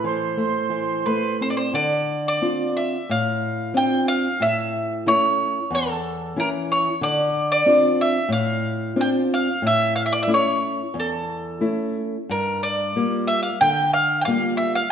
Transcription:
Already playing: A2 A4
0.04 E3 C5
0.37 A3
0.70 E3
1.06 A3 B4
1.41 C4 C5
1.50 D5
1.57 C5
1.74 D3 D5
2.28 D5
2.42 C4 D4 F4
2.77 E5
3.09 A2 F5
3.74 C4 D4 F4 G5
4.08 F5
4.40 A2 E5
5.06 A3 C#4 E4 C#5
5.71 E2
5.75 A4
6.36 E3 C#4 E4 A#4
6.72 C#5
7.01 D3 D5
7.52 D5
7.66 C4 D4 F4
8.01 E5
8.29 A2 F5
8.96 C4 D4 F4
9.01 G5
9.34 F5
9.62 A2
9.67 E5
9.96 F5
10.06 E5
10.13 D5
10.23 E5
10.27 A3 C#4 E4
10.34 C#5
10.94 E2
11.00 A4
11.61 A3 C#4 E4
12.29 G2 A#4
12.63 D5
12.96 G3 A#3 F4
13.27 E5
13.43 F5
13.61 D3 G5
13.94 F5
14.21 F5 G5
14.28 G3 A#3 F4
14.57 E5
14.75 F5

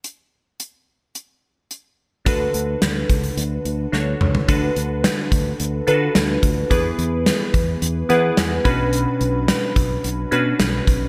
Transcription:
0.04 closed hi-hat
0.60 closed hi-hat
1.15 closed hi-hat
1.71 closed hi-hat
2.25 D2 D3 D4 F#4 A4 B4, kick, closed hi-hat
2.54 D2, closed hi-hat
2.82 D2, snare, closed hi-hat
3.10 C#2, kick, closed hi-hat
3.24 closed hi-hat
3.37 D2, closed hi-hat
3.65 D2, closed hi-hat
3.92 D2 D4 F#4 A4 C#5, snare
4.21 C#2, mid tom
4.35 floor tom
4.48 D2 D3 D4 F#4 A4 B4, kick, closed hi-hat
4.76 D2, closed hi-hat
5.04 snare, closed hi-hat
5.32 D2, kick, closed hi-hat
5.60 D2, closed hi-hat
5.87 D3 D4 F4 A4 B4, closed hi-hat
5.94 F#4
6.15 D2, snare, closed hi-hat
6.43 D2, kick, closed hi-hat
6.70 E2 E3 B3 E4 G#4 B4, kick, closed hi-hat
6.98 E2, closed hi-hat
7.26 snare, closed hi-hat
7.54 E2, kick, closed hi-hat
7.82 E2, closed hi-hat
8.09 E3 B3 E4 G#4 B4 F#5, closed hi-hat
8.37 E2 G#5, snare, closed hi-hat
8.65 B1 B2 C#4 D4 F#4 B4 B5, kick, closed hi-hat
8.93 closed hi-hat
9.21 B1, closed hi-hat
9.48 snare, closed hi-hat
9.76 B1, kick, closed hi-hat
10.04 B1, closed hi-hat
10.31 B2 C#4 D4 F#4 B4, closed hi-hat
10.60 B1, snare, closed hi-hat
10.87 B1, kick, closed hi-hat

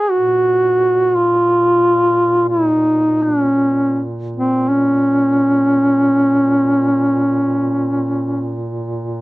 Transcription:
Already playing: G#4
0.11 A#2 F#4
1.15 F4
2.48 E4
2.66 D#4
3.23 D4
3.42 C#4
4.36 C4
4.69 C#4

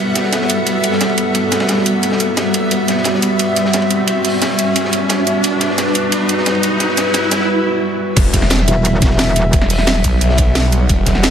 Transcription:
Already playing: G3 B3 F#4 E5 F#5, riser
0.00 A4
0.15 snare, closed hi-hat, ride
0.23 snare
0.33 snare, closed hi-hat, ride
0.42 snare
0.50 closed hi-hat, ride
0.66 closed hi-hat, ride
0.84 closed hi-hat, ride
0.92 snare
1.01 snare, closed hi-hat, ride
1.09 ride
1.18 closed hi-hat, ride
1.35 closed hi-hat, ride
1.52 snare, closed hi-hat, ride
1.60 snare, ride
1.68 snare, closed hi-hat, ride
1.78 snare
1.86 closed hi-hat, ride
2.03 closed hi-hat, ride
2.12 snare
2.20 closed hi-hat, ride
2.37 snare, closed hi-hat, ride
2.54 closed hi-hat, ride
2.71 E5, closed hi-hat, ride
2.88 snare, closed hi-hat, ride
2.97 snare
3.04 snare, closed hi-hat, ride
3.14 snare
3.22 closed hi-hat, ride
3.39 closed hi-hat, ride
3.56 closed hi-hat, ride
3.65 snare
3.73 snare, closed hi-hat, ride
3.82 ride
3.90 closed hi-hat, ride
4.07 closed hi-hat, ride
4.25 closed hi-hat, open hi-hat
4.42 snare, closed hi-hat, ride
4.51 snare
4.59 closed hi-hat, ride
4.76 closed hi-hat, ride
4.85 snare
4.93 closed hi-hat, ride
5.09 snare, closed hi-hat, ride
5.27 closed hi-hat, ride
5.44 B4, closed hi-hat, ride
5.60 snare, closed hi-hat, ride
5.70 snare
5.78 snare, closed hi-hat, ride
5.87 snare
5.95 closed hi-hat, ride
6.12 closed hi-hat, ride
6.29 closed hi-hat, ride
6.38 snare
6.46 snare, closed hi-hat, ride
6.55 ride
6.63 closed hi-hat, ride
6.80 snare, closed hi-hat, ride
6.88 snare
6.97 snare, closed hi-hat, ride
7.06 snare
7.14 snare, closed hi-hat, ride
7.22 snare
7.31 snare, closed hi-hat, ride
7.40 snare
8.16 E1 F#3 G3 E5, kick, closed hi-hat, crash, ride, impact
8.33 kick, snare, closed hi-hat, ride
8.42 snare
8.50 snare, closed hi-hat, ride
8.59 snare
8.68 E1 F#5, closed hi-hat, ride
8.85 closed hi-hat, ride
9.02 kick, snare, closed hi-hat, ride
9.11 snare
9.19 snare, closed hi-hat, ride
9.27 ride
9.36 snare, closed hi-hat, ride
9.53 E1, kick, closed hi-hat, ride
9.62 snare
9.70 closed hi-hat, open hi-hat
9.79 snare
9.87 snare, closed hi-hat, ride
9.95 snare
10.04 B1, kick, closed hi-hat, ride
10.21 closed hi-hat, ride
10.29 snare
10.38 kick, closed hi-hat, ride
10.55 snare, closed hi-hat, ride
10.72 closed hi-hat, ride
10.89 E1 A4, kick, closed hi-hat, ride
11.06 kick, snare, closed hi-hat, ride
11.15 snare
11.23 snare, closed hi-hat, ride

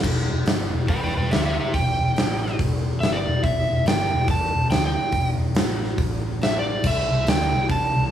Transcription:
0.03 E1, kick, crash
0.31 E1
0.46 G1, snare, open hi-hat
0.62 snare
0.72 E1
0.88 E2 B4 G5, kick, open hi-hat
1.03 B4 G5
1.15 E1 B4 G5
1.31 D2 G4 E5, snare, open hi-hat
1.45 G4 E5
1.59 G4 E5, muted fingered electric bass stroke
1.74 E1 G5, kick, open hi-hat
1.99 E1
2.16 A1, snare, open hi-hat
2.32 snare
2.46 snare
2.59 E1, kick, open hi-hat
3.00 G1 E5, snare, open hi-hat
3.13 D5
3.27 E1
3.43 E1 E5, kick, open hi-hat
3.71 E1
3.86 G1 G5, snare, open hi-hat
4.13 E1
4.28 E2 A5, kick, open hi-hat
4.54 E1
4.68 D2 G5, open hi-hat
4.72 snare
4.87 G5
4.96 muted fingered electric bass stroke
5.12 E1, kick, open hi-hat
5.38 E1
5.55 A1, snare, open hi-hat
5.84 snare
5.98 A1, kick, open hi-hat
6.41 E5, snare, open hi-hat
6.59 D5
6.83 C2 E5, kick, crash
7.12 C2
7.27 D2 G5, snare, open hi-hat
7.42 snare
7.53 C2
7.70 C3 A5, kick, open hi-hat
7.95 C2

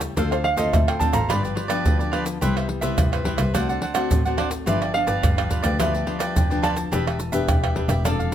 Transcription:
Already playing: C#3 G3 A3 E4
0.01 muted cavaquinho stroke, pandeiro, shaker
0.16 D2 D3 A3 C4 D4 F4 A4 C5 F5, pandeiro, shaker, surdo
0.31 A4 C5 F5, pandeiro, tamborim, shaker
0.44 F5, muted cavaquinho stroke, pandeiro
0.57 D2 A3 C4 F4 A4 C5 D#5 F5, pandeiro, shaker
0.73 D2 A2 E5, pandeiro, tamborim, shaker, surdo
0.87 A4 C5 F5 G5, pandeiro, tamborim, shaker
0.99 A3 C4 D4 F4 A4 C5 F5 A5, pandeiro, shaker, surdo
1.13 G#1 A4 C5 F5 A#5, pandeiro, tamborim, shaker
1.29 G1 G2 F3 B3 D4 F4 G4 B4 D5 B5, pandeiro, tamborim, shaker, surdo
1.43 G4 B4 D5, pandeiro, shaker
1.55 F4 G4 B4 D5, pandeiro
1.68 F3 B3 D4 G4 B4 D5, pandeiro, tamborim, shaker
1.85 D2 D3, pandeiro, shaker, surdo
1.99 G4 B4 D5, pandeiro, shaker
2.12 F3 B3 D4 F4 G4 B4 D5, pandeiro, tamborim
2.25 muted cavaquinho stroke, pandeiro, shaker
2.41 C2 C3 G3 B3 E4 G4 B4 C5 E5, pandeiro, shaker, surdo
2.56 B4 C5 E5, pandeiro, tamborim, shaker
2.69 muted cavaquinho stroke, pandeiro
2.81 C2 G3 B3 E4 B4 C5 E5, pandeiro, shaker
2.98 C2 G2, pandeiro, tamborim, shaker, surdo
3.12 B4 C5 E5, pandeiro, tamborim, shaker
3.24 G3 B3 E4 G4 B4 C5 E5, pandeiro
3.37 C2 B4 C5 E5, pandeiro, tamborim, shaker
3.54 D2 D3 A3 C4 D4 F#4 C5 D5 F#5, pandeiro, tamborim, shaker, surdo
3.69 C5 D5 F#5, pandeiro, shaker
3.81 D4 C5 D5 F#5, pandeiro
3.94 A3 C4 F#4 C5 D5 F#5, pandeiro, tamborim, shaker
4.11 A1 A2, pandeiro, shaker, surdo
4.25 A3 C4 F#4 C5 D5 F#5, pandeiro, shaker
4.37 D4 C5 D5 F#5, pandeiro, tamborim
4.50 muted cavaquinho stroke, pandeiro, shaker
4.66 G1 G2 F3 B3 D4 F4 G4 B4 D5 E5, pandeiro, shaker, surdo
4.81 G4 B4 D5, pandeiro, tamborim, shaker
4.93 F3 B3 D4 F5, muted cavaquinho stroke, pandeiro
5.07 G1 G4 B4 D5, pandeiro, shaker
5.23 G1 D3, pandeiro, tamborim, shaker, surdo
5.37 F3 B3 D4 G4 B4 D5, pandeiro, tamborim, shaker
5.50 F4 G4 B4 D5, pandeiro, shaker, surdo
5.62 D2 F3 B3 D4 G4 B4 D5, pandeiro, tamborim, shaker
5.79 D2 G2 F3 B3 D4 F4 G4 B4 D5 E5, pandeiro, tamborim, shaker, surdo
5.93 G4 B4 D5, pandeiro, shaker
6.06 F3 B3 D4 F4 G4 B4 D5, pandeiro
6.19 G4 B4 D5, pandeiro, tamborim, shaker
6.36 F1 D3 G5, pandeiro, shaker, surdo
6.50 F3 B3 D4 G4 B4 D5, pandeiro, shaker
6.63 F4 G4 B4 D5 A5, pandeiro, tamborim, shaker
6.76 muted cavaquinho stroke, pandeiro, shaker
6.91 E1 E3 B3 D4 G4 B4 E5, pandeiro, shaker, surdo
7.07 G4 B4 E5, pandeiro, tamborim, shaker
7.19 muted cavaquinho stroke, pandeiro, shaker
7.32 E1 B3 D4 G4 B4 E5, pandeiro, shaker
7.48 E1 G5, pandeiro, tamborim, shaker, surdo
7.63 G4 B4 E5, pandeiro, tamborim, shaker
7.75 B3 D4 G4 B4 E5, pandeiro
7.88 E1 G4 B4 E5, pandeiro, tamborim, shaker
8.05 F1 F3 C4 D4 A4 D5 F5, pandeiro, tamborim, shaker, surdo
8.19 A4 D5 F5, pandeiro, shaker

